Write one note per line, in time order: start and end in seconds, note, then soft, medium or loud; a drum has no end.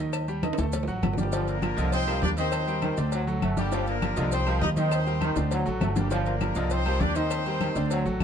0.00 0.52 D#2 medium
0.00 0.23 D#3 medium
0.00 0.23 D#4 medium
0.00 0.23 D#5 medium
0.13 cowbell loud
0.13 high conga soft
0.13 low agogo loud
0.13 claves medium
0.13 maracas medium
0.28 0.40 G3 medium
0.28 0.41 G4 medium
0.28 0.41 G5 medium
0.28 high conga soft
0.28 maracas soft
0.43 0.55 D#3 medium
0.43 0.55 D#4 medium
0.43 0.56 D#5 medium
0.43 cowbell medium
0.43 high conga medium
0.43 high timbale medium
0.43 low agogo loud
0.43 claves medium
0.43 maracas soft
0.53 high timbale medium
0.58 0.86 D2 medium
0.58 0.83 A3 medium
0.58 0.83 A4 medium
0.58 0.83 A5 medium
0.58 cowbell medium
0.58 high bongo medium
0.58 high conga soft
0.58 maracas medium
0.63 high timbale medium
0.73 cowbell loud
0.73 low bongo medium
0.73 high conga soft
0.73 low agogo medium
0.73 maracas medium
0.83 low timbale loud
0.87 1.02 A1 medium
0.87 1.12 F#3 medium
0.87 1.12 F#4 medium
0.87 1.13 F#5 medium
0.87 high conga soft
0.87 maracas soft
1.02 1.72 G1 loud
1.02 cowbell medium
1.02 low bongo medium
1.02 high conga medium
1.02 low timbale medium
1.02 low agogo loud
1.02 claves medium
1.02 maracas soft
1.13 low timbale medium
1.18 1.46 G3 medium
1.18 1.46 A#3 medium
1.18 1.30 D4 medium
1.18 1.46 G4 medium
1.18 1.30 D5 medium
1.18 1.30 D6 medium
1.18 low bongo medium
1.18 high conga medium
1.18 maracas medium
1.23 low timbale loud
1.32 1.57 D3 medium
1.32 1.56 F3 medium
1.32 1.57 D4 medium
1.32 1.57 D5 medium
1.32 cowbell loud
1.32 high conga soft
1.32 low agogo medium
1.32 maracas medium
1.48 1.93 A#3 medium
1.48 1.93 D4 medium
1.48 1.93 A#4 medium
1.48 cowbell medium
1.48 high conga soft
1.48 maracas soft
1.62 1.74 F3 medium
1.62 1.75 F4 medium
1.62 1.75 G4 medium
1.62 cowbell medium
1.62 high conga medium
1.62 low agogo loud
1.62 claves medium
1.62 maracas soft
1.77 2.19 C2 loud
1.77 1.94 D3 medium
1.77 2.02 F3 medium
1.77 2.02 F4 medium
1.77 2.02 D#5 medium
1.77 cowbell medium
1.77 high conga soft
1.77 maracas medium
1.92 2.21 C4 loud
1.92 2.21 D#4 medium
1.92 2.21 C5 loud
1.92 cowbell loud
1.92 high conga soft
1.92 low agogo medium
1.92 maracas loud
2.07 2.24 F3 medium
2.07 2.32 G3 medium
2.07 2.32 G4 medium
2.07 2.32 A#4 medium
2.07 high conga soft
2.07 low agogo loud
2.07 claves medium
2.07 maracas soft
2.22 2.92 D#2 loud
2.22 2.30 D4 loud
2.22 2.30 G4 medium
2.22 2.30 D5 loud
2.22 cowbell medium
2.22 high conga loud
2.22 low timbale medium
2.22 maracas soft
2.37 2.62 D#3 medium
2.37 3.23 C4 medium
2.37 2.62 D#4 medium
2.37 3.09 D#4 medium
2.37 3.23 C5 loud
2.37 2.62 D#5 loud
2.37 cowbell medium
2.37 low agogo medium
2.37 maracas medium
2.52 cowbell loud
2.52 high conga soft
2.52 low agogo loud
2.52 claves medium
2.52 maracas medium
2.67 2.92 G3 medium
2.67 2.92 G4 medium
2.67 2.92 A#4 medium
2.67 high conga soft
2.67 maracas soft
2.82 2.99 D#3 medium
2.82 cowbell medium
2.82 high conga medium
2.82 low agogo loud
2.82 claves medium
2.82 maracas soft
2.97 3.39 D2 loud
2.97 3.22 D3 medium
2.97 3.22 D4 medium
2.97 3.22 D5 medium
2.97 cowbell medium
2.97 high conga soft
2.97 maracas medium
3.12 3.29 F#3 medium
3.12 cowbell loud
3.12 high conga soft
3.12 low agogo medium
3.12 maracas medium
3.27 3.52 F#3 medium
3.27 3.52 F#4 medium
3.27 3.52 A4 medium
3.27 high conga soft
3.27 maracas soft
3.42 4.11 G1 loud
3.42 3.58 A3 medium
3.42 cowbell medium
3.42 high conga medium
3.42 low agogo loud
3.42 claves medium
3.42 maracas soft
3.57 3.69 D3 medium
3.57 3.85 G3 medium
3.57 3.86 A#3 medium
3.57 3.69 D4 medium
3.57 3.85 G4 medium
3.57 3.70 D5 medium
3.57 high conga medium
3.57 maracas medium
3.72 3.97 D3 loud
3.72 3.96 F3 medium
3.72 3.97 D4 loud
3.72 3.97 D5 medium
3.72 cowbell loud
3.72 high conga soft
3.72 low agogo medium
3.72 maracas medium
3.87 4.29 A#3 medium
3.87 4.30 D4 medium
3.87 4.29 A#4 medium
3.87 cowbell medium
3.87 high conga soft
3.87 maracas soft
4.02 4.14 F3 medium
4.02 4.14 F4 medium
4.02 4.14 G4 medium
4.02 cowbell medium
4.02 high conga loud
4.02 low agogo loud
4.02 claves medium
4.02 maracas soft
4.16 4.59 C2 loud
4.16 4.33 D3 medium
4.16 4.41 F3 medium
4.16 4.41 F4 medium
4.16 4.41 D#5 medium
4.16 cowbell medium
4.16 high conga soft
4.16 maracas medium
4.32 4.60 C4 medium
4.32 4.60 D#4 medium
4.32 4.60 C5 loud
4.32 cowbell loud
4.32 high conga soft
4.32 low agogo medium
4.32 maracas medium
4.46 4.63 F3 medium
4.46 4.71 G3 medium
4.46 4.71 G4 medium
4.46 4.72 A#4 medium
4.46 high conga soft
4.46 low agogo loud
4.46 claves medium
4.46 maracas soft
4.62 5.31 D#2 loud
4.62 4.69 D#4 loud
4.62 4.69 G4 medium
4.62 4.69 D#5 loud
4.62 cowbell medium
4.62 high conga medium
4.62 low timbale medium
4.62 maracas soft
4.76 5.01 D#3 medium
4.76 5.63 C4 medium
4.76 5.01 D#4 medium
4.76 5.48 D#4 medium
4.76 5.63 C5 loud
4.76 5.01 D#5 medium
4.76 cowbell medium
4.76 high conga medium
4.76 low agogo medium
4.76 maracas medium
4.91 cowbell loud
4.91 high conga soft
4.91 low agogo loud
4.91 claves medium
4.91 maracas loud
5.07 5.31 G3 medium
5.07 5.31 G4 medium
5.07 5.31 A#4 medium
5.07 high conga soft
5.07 maracas soft
5.21 5.38 D#3 medium
5.21 cowbell medium
5.21 high conga loud
5.21 low agogo loud
5.21 claves medium
5.21 maracas soft
5.36 5.64 D2 loud
5.36 5.61 D3 medium
5.36 5.61 D4 medium
5.36 5.61 D5 medium
5.36 cowbell medium
5.36 high bongo medium
5.36 high conga soft
5.36 maracas medium
5.51 5.67 F#3 medium
5.51 cowbell loud
5.51 high conga soft
5.51 low agogo medium
5.51 maracas medium
5.66 5.80 A1 medium
5.66 5.90 F#3 medium
5.66 5.91 F#4 medium
5.66 5.91 A4 medium
5.66 high conga soft
5.66 maracas soft
5.80 6.50 G1 loud
5.80 5.97 A3 medium
5.80 cowbell medium
5.80 low bongo medium
5.80 high conga medium
5.80 low timbale medium
5.80 low agogo loud
5.80 claves medium
5.80 maracas soft
5.96 6.08 D3 medium
5.96 6.24 G3 medium
5.96 6.25 A#3 medium
5.96 6.08 D4 medium
5.96 6.24 G4 medium
5.96 6.08 D5 medium
5.96 low bongo loud
5.96 high conga medium
5.96 maracas medium
6.11 6.35 D3 medium
6.11 6.35 F3 loud
6.11 6.36 D4 medium
6.11 6.36 D5 medium
6.11 cowbell loud
6.11 high conga soft
6.11 low agogo medium
6.11 maracas medium
6.26 6.68 A#3 medium
6.26 6.69 D4 medium
6.26 6.68 A#4 medium
6.26 cowbell medium
6.26 high conga soft
6.26 maracas soft
6.40 6.53 F3 medium
6.40 6.53 F4 medium
6.40 6.54 G4 medium
6.40 cowbell medium
6.40 high conga loud
6.40 low agogo loud
6.40 claves medium
6.40 maracas soft
6.55 6.98 C2 medium
6.55 6.72 D3 medium
6.55 6.81 F3 medium
6.55 6.81 F4 medium
6.55 6.81 D#5 medium
6.55 cowbell medium
6.55 high conga soft
6.55 maracas medium
6.70 7.01 C4 loud
6.70 7.02 D#4 medium
6.70 7.01 C5 loud
6.70 cowbell loud
6.70 high conga soft
6.70 low agogo loud
6.70 maracas medium
6.85 7.02 F3 medium
6.85 7.11 G3 medium
6.85 7.11 G4 medium
6.85 7.11 A#4 medium
6.85 high conga soft
6.85 low agogo loud
6.85 claves medium
6.85 maracas soft
7.00 7.70 D#2 medium
7.00 7.16 D4 loud
7.00 7.16 G4 medium
7.00 7.16 D5 loud
7.00 cowbell medium
7.00 high conga medium
7.00 low timbale medium
7.00 maracas soft
7.15 7.39 D#3 medium
7.15 7.40 D#3 medium
7.15 8.05 C4 medium
7.15 7.41 D#4 medium
7.15 7.91 D#4 medium
7.15 8.05 C5 loud
7.15 7.41 D#5 medium
7.15 cowbell medium
7.15 low agogo medium
7.15 maracas medium
7.31 cowbell loud
7.31 high conga soft
7.31 low agogo loud
7.31 claves medium
7.31 maracas medium
7.46 7.71 G3 medium
7.46 7.71 G4 medium
7.46 7.71 A#4 medium
7.46 high conga soft
7.46 maracas soft
7.61 7.77 D#3 medium
7.61 cowbell medium
7.61 high conga medium
7.61 low agogo loud
7.61 claves medium
7.61 maracas soft
7.75 8.03 D2 loud
7.75 8.00 D3 medium
7.75 8.01 D4 medium
7.75 8.01 D5 loud
7.75 cowbell medium
7.75 high conga soft
7.75 maracas medium
7.90 8.07 F#3 medium
7.90 cowbell loud
7.90 high conga soft
7.90 low agogo medium
7.90 maracas loud
8.05 8.19 A1 medium
8.05 8.24 F#3 medium
8.05 8.24 F#4 medium
8.05 8.24 A4 medium
8.05 high conga soft
8.05 maracas soft
8.20 8.24 G1 medium
8.20 8.24 A3 medium
8.20 cowbell medium
8.20 high conga loud
8.20 low agogo loud
8.20 claves medium
8.20 maracas soft